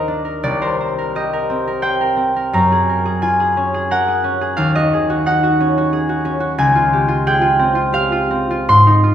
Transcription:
Already playing: D#2 F3 F4 A#4 D#5 F5 G5
0.08 D4
0.25 A#4
0.43 C2 D5
0.61 A#4 C5
0.81 C5
0.98 A#4
1.15 G4 D#5
1.33 A#4
1.50 C4
1.67 A#4
1.82 C5 G5
2.01 A#4
2.17 C4
2.36 A#4
2.53 F#2 A#5
2.72 G#4
2.89 A#4
3.05 G#4
3.22 F4 G#5
3.40 G#4
3.57 C#4
3.74 G#4
3.91 A#4 F#5
4.08 G#4
4.24 C#4
4.41 G#4
4.57 D#2 F5
4.75 F#4 D#5
4.93 G#4
5.10 F#4
5.26 D#4 F#5
5.43 F#4
5.60 C#4
5.78 F#4
5.93 G#4
6.09 F#4
6.25 C#4
6.40 F#4
6.58 C#2 G#5
6.75 F4
6.93 G4
7.08 F4
7.27 G#4 G5
7.41 F4
7.59 C4
7.75 F4
7.93 G4 F5
8.12 F4
8.31 C4
8.51 F4
8.68 G#2 C6
8.87 D#4
9.03 F4

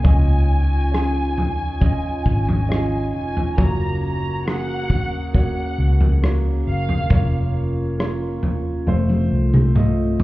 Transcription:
Already playing: C#4 G#5
0.04 C#2 C#3 C#4 D#4 F4 D#5, kick, floor tom
0.92 C#4 F4 G#4, cross-stick
1.38 floor tom
1.81 C#4 F4 D#5, kick, floor tom
2.26 G#1, kick
2.48 floor tom
2.69 C#4 F4 D#5, cross-stick
3.14 F1 G#5
3.37 floor tom
3.57 F#1 A#3 C#4 F#4 A#4 C#5 A#5, kick, floor tom
4.04 A#5
4.45 A#3 F#4 G#4 F#5, cross-stick
4.90 kick, floor tom
5.33 A#3 F#4 G#4 C#5 F#5, kick, floor tom
5.78 C#2
6.01 floor tom
6.22 A#3 F#4 C#5, cross-stick
6.67 F#1 F5
6.89 floor tom
7.10 F1 A#3 F4 C#5, kick, floor tom
7.98 A#3 F4 C#5, cross-stick
8.43 floor tom
8.87 F1 A3 C4 F4 A4 C5, high tom
9.09 high tom
9.31 C2
9.54 mid tom
9.75 A3 F4 D#5, mid tom
10.20 A1, floor tom

